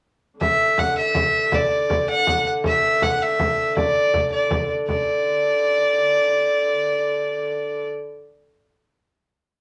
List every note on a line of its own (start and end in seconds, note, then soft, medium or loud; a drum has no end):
0.40 4.87 D3 medium
0.40 0.80 E5 medium
0.40 frame drum medium
0.78 0.97 F#5 medium
0.78 frame drum medium
0.97 1.56 E5 medium
0.97 frame drum soft
1.15 frame drum medium
1.52 2.09 D5 medium
1.52 frame drum medium
1.90 frame drum medium
2.09 2.48 F#5 medium
2.09 frame drum soft
2.27 frame drum medium
2.64 3.04 E5 medium
2.64 frame drum medium
3.02 3.24 F#5 medium
3.02 frame drum medium
3.21 3.77 E5 medium
3.21 frame drum soft
3.39 frame drum medium
3.77 4.29 D5 medium
3.77 frame drum medium
3.96 frame drum soft
4.14 frame drum medium
4.32 4.71 D5 medium
4.51 frame drum medium
4.87 7.90 D3 medium
4.87 7.87 D5 medium
4.87 frame drum medium